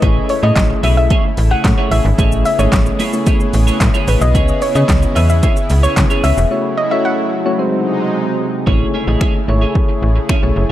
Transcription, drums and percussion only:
0.02 kick, closed hi-hat
0.29 open hi-hat
0.56 kick, snare, clap, closed hi-hat
0.83 open hi-hat
1.10 kick, closed hi-hat
1.37 open hi-hat
1.64 kick, snare, clap, closed hi-hat
1.91 open hi-hat
2.19 kick, closed hi-hat, shaker
2.32 shaker
2.45 open hi-hat, shaker
2.59 shaker
2.72 kick, snare, clap, closed hi-hat, shaker
2.86 shaker
3.00 open hi-hat, shaker
3.13 shaker
3.27 kick, closed hi-hat, shaker
3.40 shaker
3.53 open hi-hat, shaker
3.68 shaker
3.81 kick, snare, clap, closed hi-hat, shaker
3.94 shaker
4.08 open hi-hat, shaker
4.21 shaker
4.35 kick, closed hi-hat, shaker
4.48 shaker
4.62 open hi-hat, shaker
4.75 shaker
4.89 kick, snare, clap, closed hi-hat, shaker
5.02 shaker
5.16 open hi-hat, shaker
5.29 shaker
5.43 kick, closed hi-hat, shaker
5.57 shaker
5.70 open hi-hat, shaker
5.84 shaker
5.97 kick, snare, clap, closed hi-hat, shaker
6.10 shaker
6.24 open hi-hat, shaker
6.38 shaker
8.67 kick
9.21 finger snap, kick
9.75 kick
10.29 finger snap, kick

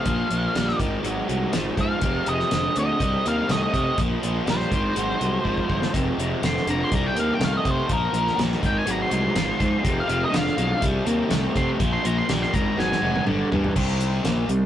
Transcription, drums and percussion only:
0.06 kick, closed hi-hat
0.31 closed hi-hat
0.55 snare, closed hi-hat
0.68 snare
0.80 kick, closed hi-hat
1.04 closed hi-hat
1.29 closed hi-hat
1.53 snare, closed hi-hat
1.77 kick, closed hi-hat
2.01 kick, closed hi-hat
2.26 closed hi-hat
2.40 snare
2.51 snare, closed hi-hat
2.76 closed hi-hat
3.00 kick, closed hi-hat
3.26 closed hi-hat
3.49 snare, closed hi-hat
3.74 kick, closed hi-hat
3.98 kick, closed hi-hat
4.23 closed hi-hat
4.47 snare, closed hi-hat
4.60 snare
4.72 kick, closed hi-hat
4.96 closed hi-hat
5.21 closed hi-hat
5.45 kick
5.57 kick
5.70 kick
5.82 snare
5.94 kick, closed hi-hat
6.20 closed hi-hat
6.43 snare, closed hi-hat
6.57 snare
6.67 closed hi-hat
6.92 kick, closed hi-hat
7.16 closed hi-hat
7.41 snare, closed hi-hat
7.65 kick, closed hi-hat
7.89 kick, closed hi-hat
8.14 closed hi-hat
8.27 snare
8.39 snare, closed hi-hat
8.52 snare
8.63 kick, closed hi-hat
8.87 closed hi-hat
9.11 closed hi-hat
9.36 snare, closed hi-hat
9.60 kick, closed hi-hat
9.85 kick, closed hi-hat
10.09 closed hi-hat
10.34 snare, closed hi-hat
10.47 snare
10.58 closed hi-hat
10.82 kick, closed hi-hat
11.07 closed hi-hat
11.31 snare, closed hi-hat
11.56 kick, closed hi-hat
11.80 kick, closed hi-hat
12.05 closed hi-hat
12.29 snare, closed hi-hat
12.43 snare
12.54 kick, closed hi-hat
12.79 snare
12.92 snare
13.16 high tom
13.27 mid tom
13.52 floor tom
13.64 floor tom
13.76 kick, crash
14.00 closed hi-hat
14.25 snare, closed hi-hat
14.49 closed hi-hat

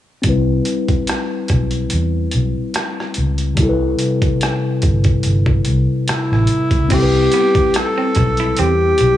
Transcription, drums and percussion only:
0.23 kick, closed hi-hat
0.65 closed hi-hat
0.88 kick, closed hi-hat
1.07 cross-stick, closed hi-hat
1.48 kick, cross-stick, closed hi-hat
1.71 closed hi-hat
1.90 closed hi-hat
2.31 closed hi-hat
2.74 cross-stick, closed hi-hat
3.00 cross-stick
3.14 closed hi-hat
3.38 closed hi-hat
3.57 kick, closed hi-hat
3.99 closed hi-hat
4.22 kick, closed hi-hat
4.41 cross-stick, closed hi-hat
4.82 kick, closed hi-hat
5.04 kick, closed hi-hat
5.23 closed hi-hat
5.46 kick
5.65 closed hi-hat
6.08 cross-stick, closed hi-hat
6.33 cross-stick
6.47 closed hi-hat
6.71 kick, closed hi-hat
6.90 kick, closed hi-hat, crash
7.32 closed hi-hat
7.55 kick, closed hi-hat
7.74 cross-stick, closed hi-hat
8.15 kick, cross-stick, closed hi-hat
8.37 closed hi-hat
8.57 closed hi-hat
8.98 closed hi-hat

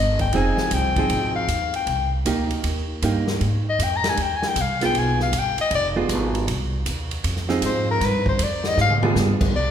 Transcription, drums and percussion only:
0.19 kick, ride
0.33 kick, ride
0.57 snare
0.71 kick, hi-hat pedal, ride
0.96 kick, ride
1.10 kick, ride
1.48 kick, hi-hat pedal, ride
1.74 ride
1.87 kick, ride
2.25 kick, hi-hat pedal, ride
2.51 ride
2.64 kick, ride
3.02 kick, hi-hat pedal, ride
3.27 snare
3.41 kick, ride
3.79 kick, hi-hat pedal, ride
4.04 snare, ride
4.17 kick, ride
4.42 snare
4.56 kick, hi-hat pedal, ride
4.81 snare, ride
4.94 kick, ride
5.20 snare
5.32 kick, hi-hat pedal, ride
5.58 ride
5.71 kick, ride
6.09 kick, hi-hat pedal, ride
6.35 ride
6.48 kick, ride
6.86 kick, hi-hat pedal, ride
7.11 ride
7.24 kick, ride
7.36 snare
7.49 snare
7.62 kick, hi-hat pedal, ride
8.01 kick, snare, ride
8.26 kick
8.39 kick, hi-hat pedal, ride
8.64 snare
8.78 snare
8.90 high tom
9.03 high tom
9.16 snare, hi-hat pedal
9.41 kick, crash
9.54 kick

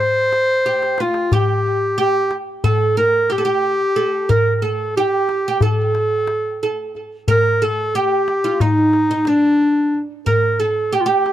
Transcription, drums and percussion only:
0.01 darbuka tek
0.33 darbuka tek
0.66 darbuka tek
0.83 darbuka ka
0.98 darbuka tek
1.14 darbuka ka
1.32 darbuka dum
1.66 darbuka ka
2.31 darbuka tek
2.64 darbuka dum
3.30 darbuka tek
3.96 darbuka ka
4.30 darbuka dum
5.29 darbuka tek
5.61 darbuka dum
5.95 darbuka tek
6.27 darbuka tek
6.95 darbuka ka
7.28 darbuka dum
7.62 darbuka ka
8.28 darbuka tek
8.60 darbuka dum
8.93 darbuka tek
9.25 darbuka tek
9.93 darbuka ka
10.27 darbuka dum
11.26 darbuka tek

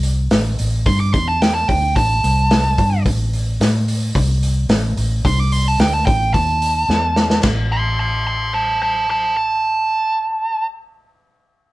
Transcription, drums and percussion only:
0.03 open hi-hat
0.31 snare, open hi-hat
0.59 open hi-hat
0.86 kick, open hi-hat
1.14 kick, open hi-hat
1.42 snare, open hi-hat
1.69 kick, open hi-hat
1.96 kick, open hi-hat
2.24 open hi-hat
2.51 snare, open hi-hat
2.78 kick, open hi-hat
3.06 kick, open hi-hat
3.33 open hi-hat
3.61 snare, open hi-hat
3.88 open hi-hat
4.15 kick, open hi-hat
4.43 open hi-hat
4.69 snare, open hi-hat
4.97 open hi-hat
5.25 kick, open hi-hat
5.52 open hi-hat
5.80 snare, open hi-hat
6.07 kick, open hi-hat
6.34 kick, open hi-hat
6.62 open hi-hat
6.90 snare
7.16 snare
7.30 snare
7.43 kick, snare, ride bell

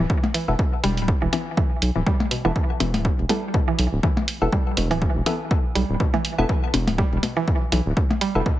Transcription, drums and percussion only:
0.10 kick
0.24 percussion blips
0.34 open hi-hat
0.59 kick
0.84 open hi-hat
0.97 open hi-hat
1.08 kick
1.33 open hi-hat, percussion blips
1.57 kick
1.82 open hi-hat
2.07 kick
2.20 percussion blips
2.31 open hi-hat
2.56 kick
2.80 open hi-hat, percussion blips
2.94 open hi-hat, percussion blips
3.05 kick
3.29 open hi-hat, percussion blips
3.54 kick
3.79 open hi-hat
4.03 kick
4.17 percussion blips
4.28 open hi-hat
4.52 kick
4.77 open hi-hat
4.91 open hi-hat
5.02 kick
5.26 open hi-hat, percussion blips
5.51 kick
5.75 open hi-hat
6.00 kick
6.14 percussion blips
6.25 open hi-hat
6.49 kick
6.74 open hi-hat, percussion blips
6.88 open hi-hat, percussion blips
6.98 kick
7.23 open hi-hat, percussion blips
7.48 kick
7.72 open hi-hat
7.97 kick
8.11 percussion blips
8.21 open hi-hat
8.46 kick

